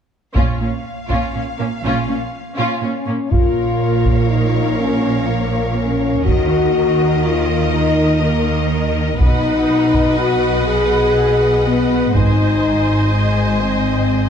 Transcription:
0.35 A#1 A#2 C#4 F4 F5, taiko
0.60 A#2 C#4
1.09 A#2 C#4 F4, taiko
1.34 A#2 C#4
1.58 A#2 A#3 C#4
1.84 A#1 A#2 C#4 F4
2.09 A#2 C#4
2.58 A#2 C#4 F4
2.82 A#2 C#4
3.07 A#2 A#3 C#4
3.30 A#1 A#2 F4 A#4 C#5 F5, taiko
4.05 taiko
4.30 D#4
4.78 C#4
5.28 A#3
5.77 C#4
6.25 D#2 D#3 F#4 A#4 D#5, taiko
7.24 F4
7.72 D#4
8.21 A#3
9.20 B1 B2 D#4 B4 D#5 F#5, taiko
9.94 taiko
10.19 F#4
10.67 G#4
11.66 B3
12.14 G#1 G#2 D#4 C5 D#5 G#5, taiko
13.13 G#3
13.61 C4

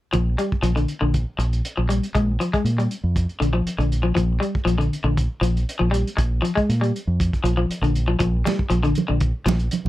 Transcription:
0.13 A#1 F3, kick, closed hi-hat
0.38 G3, closed hi-hat
0.52 kick
0.62 A#1 F3, closed hi-hat
0.76 D3, closed hi-hat
0.88 closed hi-hat
1.01 A#1 D3
1.14 kick, closed hi-hat
1.38 A#1, muted clean electric guitar stroke, closed hi-hat
1.53 closed hi-hat
1.65 closed hi-hat
1.77 A#1 F3
1.89 G3, closed hi-hat
2.03 closed hi-hat
2.15 A#1 G#3, kick, closed hi-hat
2.40 F3, closed hi-hat
2.53 G#3, muted fingered electric bass stroke, kick, closed hi-hat
2.65 A#2, closed hi-hat
2.78 G3, closed hi-hat
2.91 closed hi-hat
3.04 F2
3.16 kick, closed hi-hat
3.29 closed hi-hat
3.40 A#1 D3, closed hi-hat
3.53 F3
3.67 closed hi-hat
3.78 A#1 D3, closed hi-hat
3.92 closed hi-hat
4.03 F3
4.15 A#1 F3, kick, closed hi-hat
4.40 G3, closed hi-hat
4.55 kick
4.65 A#1 F3, closed hi-hat
4.78 D3, closed hi-hat
4.93 closed hi-hat
5.04 A#1 D3
5.17 kick, closed hi-hat
5.41 A#1 F3, closed hi-hat
5.57 closed hi-hat
5.69 closed hi-hat
5.79 A#1 F3
5.91 G3, closed hi-hat
6.07 closed hi-hat
6.17 A#1, muted clean electric guitar stroke, kick, closed hi-hat
6.42 F3, closed hi-hat
6.55 G#3, muted fingered electric bass stroke, kick, closed hi-hat
6.69 A#2, closed hi-hat
6.81 G3, closed hi-hat
6.96 closed hi-hat
7.07 F2
7.20 kick, closed hi-hat
7.33 kick, closed hi-hat
7.44 A#1 F3, closed hi-hat
7.57 F3
7.71 closed hi-hat
7.82 A#1 D3, closed hi-hat
7.95 closed hi-hat
8.08 F3
8.19 A#1 F3, kick, closed hi-hat, high conga
8.45 G3, snare, closed hi-hat, high conga
8.59 kick
8.70 A#1 F3, closed hi-hat, high conga
8.83 D3, closed hi-hat
8.95 closed hi-hat, high conga
9.08 A#1 D3
9.20 kick, closed hi-hat, high conga
9.46 A#1 F3, snare, closed hi-hat, high conga
9.59 closed hi-hat
9.71 closed hi-hat, high conga
9.85 A#1

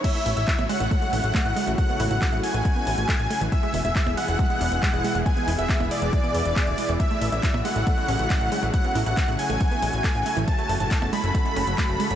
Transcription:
0.04 C#3 F#3 A3 E4 F#4 E5, kick, closed hi-hat, crash
0.15 A3, closed hi-hat
0.26 A1 A3, open hi-hat
0.37 A1 A2 E5, closed hi-hat
0.48 E4, kick, clap, closed hi-hat
0.59 A1, closed hi-hat, percussion blips
0.69 G#3 F#5, open hi-hat
0.80 A1 A3, closed hi-hat
0.91 A3, kick, closed hi-hat
1.02 A3, closed hi-hat
1.13 A1 C#4, open hi-hat
1.24 A1, closed hi-hat
1.35 A3, kick, clap, closed hi-hat
1.45 A1 A3, closed hi-hat
1.56 G#3, open hi-hat
1.67 A1 A3, closed hi-hat
1.78 F#5, kick, closed hi-hat
1.89 B3, closed hi-hat
2.00 A1 E4, open hi-hat
2.11 A1 E4 F#5, closed hi-hat
2.22 A4, kick, clap, closed hi-hat
2.32 A1 A3, closed hi-hat
2.43 G#5, open hi-hat
2.54 A1 A3, closed hi-hat
2.65 kick, closed hi-hat
2.76 B3, closed hi-hat
2.87 A1, open hi-hat
2.98 A1, closed hi-hat
3.09 A4, kick, clap, closed hi-hat
3.19 A1, closed hi-hat
3.30 A3, open hi-hat
3.41 A1 E3, closed hi-hat
3.52 B2 E3 G#3 E4 G#4 E5, kick, closed hi-hat
3.63 G#3, closed hi-hat
3.74 E1 G#3, open hi-hat
3.85 E1 G#2 E5, closed hi-hat
3.95 E4, kick, clap, closed hi-hat
4.06 E1, closed hi-hat, percussion blips
4.17 G#3 F#5, open hi-hat
4.28 E1 G#3, closed hi-hat
4.39 G#3, kick, closed hi-hat
4.50 G#3, closed hi-hat
4.61 E1 D4, open hi-hat
4.72 E1, closed hi-hat
4.82 G#3, kick, clap, closed hi-hat
4.93 E1 G#3, closed hi-hat
5.04 G#3, open hi-hat
5.15 E1 G#3, closed hi-hat
5.26 G#5, kick, closed hi-hat
5.37 B3, closed hi-hat
5.48 E1 E4, open hi-hat
5.58 E1 E4 E5, closed hi-hat
5.69 G#4, kick, clap, closed hi-hat
5.80 E1 G#3, closed hi-hat, percussion blips
5.91 D5, open hi-hat
6.02 E1 G#3, closed hi-hat
6.13 kick, closed hi-hat
6.24 B3, closed hi-hat
6.35 E2, open hi-hat
6.45 E1, closed hi-hat
6.56 G#4, kick, clap, closed hi-hat
6.67 D1, closed hi-hat
6.78 G#3, open hi-hat
6.89 E1 E3, closed hi-hat
7.00 C#3 F#3 A3 F#4 E5, kick, closed hi-hat, ride
7.11 A3, closed hi-hat
7.21 A1 A3, open hi-hat
7.32 A1 A2 E5, closed hi-hat
7.43 E4, kick, clap, closed hi-hat, ride
7.54 A1, closed hi-hat, percussion blips
7.65 G#3 F#5, open hi-hat
7.76 A1 A3, closed hi-hat
7.87 A3, kick, closed hi-hat, ride
7.98 A3, closed hi-hat
8.08 A1 C#4, open hi-hat
8.19 A1, closed hi-hat
8.30 A3, kick, clap, closed hi-hat, ride
8.41 A1 A3, closed hi-hat
8.52 G#3, open hi-hat
8.63 A1 A3, closed hi-hat
8.74 F#5, kick, closed hi-hat, ride
8.85 B3, closed hi-hat
8.95 A1 E4, open hi-hat
9.06 A1 E4 F#5, closed hi-hat
9.17 A4, kick, clap, closed hi-hat, ride
9.28 A1 A3, closed hi-hat
9.39 G#5, open hi-hat
9.50 A1 A3, closed hi-hat
9.61 kick, closed hi-hat, ride
9.71 B3, closed hi-hat
9.82 A1, open hi-hat
9.93 A1, closed hi-hat
10.04 A4, kick, clap, closed hi-hat, ride
10.15 A1, closed hi-hat
10.26 A3, open hi-hat
10.37 A1 E3, closed hi-hat
10.47 C#3 F#3 A4 A5, kick, closed hi-hat, ride
10.58 A3, closed hi-hat
10.69 F#1 A3, open hi-hat
10.80 F#1 A2 A5, closed hi-hat
10.91 E4, kick, clap, closed hi-hat, ride
11.02 F#1, closed hi-hat, percussion blips
11.13 G#3 B5, open hi-hat
11.24 F#1 A3, closed hi-hat
11.35 A3, kick, closed hi-hat, ride
11.45 A3, closed hi-hat
11.56 F#1 C#4, open hi-hat
11.67 F#1, closed hi-hat
11.78 A3, kick, clap, closed hi-hat, ride
11.89 F#1 A3, closed hi-hat
12.00 G#3, open hi-hat
12.11 F#1 A3, closed hi-hat

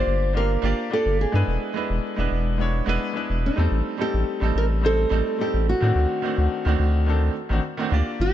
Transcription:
Already playing: A#3 D4 F4 G4 C5 D5
0.07 G1
0.33 A#3 D4 F4 G4 A#4 F5
0.62 G1 A#3 D4 F4 G4 D5
0.90 A#3 D4 F4 G4 A4 D5
1.06 G1
1.21 G#4
1.32 G2 G#3 B3 D4 E4 B4
1.48 E1
1.74 G#3 B3 D4 E4 B4
1.90 E1
2.16 E1 G#3 B3 D4 E4 B4
2.32 E1
2.58 G#3 B3 D4 E4 C#5
2.86 E1 G#3 B3 D4 E4 B4
3.14 G#3 B3 D4 E4 B4
3.30 E1
3.46 D#4
3.56 E2 G3 A3 C4 D#4 A4
3.72 A1
3.98 G3 A3 C4 D#4 G4 A4
4.14 A1
4.40 A1 G3 A3 C4 D#4 A4
4.55 A1 A#4
4.81 G3 A3 C4 D#4 C5
4.86 A4
5.09 A1 G3 A3 C4 D#4 A4
5.38 G3 A3 C4 D#4 G4 A4
5.54 A1
5.69 F#4
5.81 A2 D#3 A3 C4 D4 F#4
5.96 D2
6.22 D#3 A3 C4 D4 F#4
6.38 D2
6.65 D2 D#3 A3 C4 D4 F#4
6.79 D2
7.06 D#3 A3 C4 D4 A4
7.49 A1 D#3 A3 C4 D4 F#4
7.77 D#3 A3 C4 D4 F#4
7.90 D2 A#3 D4 F4 G4 D5
8.20 G1 G4

